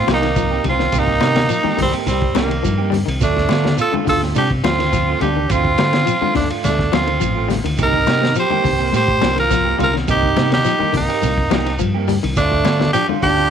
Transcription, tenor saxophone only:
0.14 0.64 D#4 medium
0.69 1.00 F4 loud
0.99 1.81 D#4 loud
1.82 1.94 C4 medium
2.08 2.34 C4 medium
2.38 2.90 A#3 medium
3.23 3.76 D4 loud
3.81 3.93 A4 loud
4.09 4.22 A4 loud
4.38 4.50 G4 loud
4.64 5.17 F4 loud
5.22 5.53 G4 medium
5.51 6.36 F4 loud
6.36 6.49 D4 medium
6.64 6.91 D4 medium
6.94 7.49 F4 medium
7.83 8.34 A#4 loud
8.40 8.91 C5 loud
8.96 9.35 C5 loud
9.40 9.78 A#4 loud
9.83 9.95 A#4 medium
10.11 10.50 G4 loud
10.53 10.92 G4 loud
10.97 11.77 D#4 medium
12.38 12.91 D4 loud
12.93 13.06 G4 loud
13.23 13.50 G4 loud

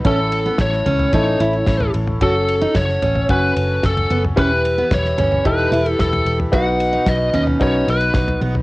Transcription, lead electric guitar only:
0.07 0.57 A4 medium
0.61 1.11 C#5 medium
1.14 1.91 C#5 medium
2.23 2.77 A4 medium
2.76 3.26 C#5 medium
3.31 3.85 B4 loud
3.86 4.22 A4 medium
4.39 4.93 B4 loud
4.94 5.48 C#5 loud
5.47 5.90 B4 medium
5.90 6.00 A4 medium
6.00 6.37 A4 medium
6.54 7.09 F#5 loud
7.08 7.34 D#5 loud
7.35 7.42 D#5 loud
7.62 7.89 C#5 medium
7.90 8.39 B4 medium

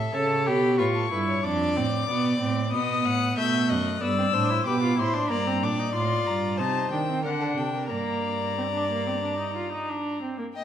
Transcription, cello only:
0.00 0.14 A2 medium
0.15 0.50 C#3 medium
0.48 0.82 B2 medium
0.80 1.12 A2 medium
1.13 1.44 G2 medium
1.45 1.79 F2 medium
1.77 2.08 A2 medium
2.09 2.40 B2 medium
2.41 2.75 A2 medium
2.73 3.06 B2 medium
3.05 3.37 A2 medium
3.38 3.72 B2 medium
3.70 4.02 F#2 medium
4.02 4.33 G2 medium
4.34 4.66 A2 medium
4.67 5.01 B2 medium
4.99 5.30 A2 medium
5.31 5.65 G2 medium
5.63 5.95 A#2 medium
5.95 6.27 A2 medium
6.28 6.61 G2 medium
6.60 6.92 C3 medium
6.92 7.26 D#3 medium
7.25 7.57 D3 medium
7.57 7.92 C3 medium
7.91 10.22 G2 medium

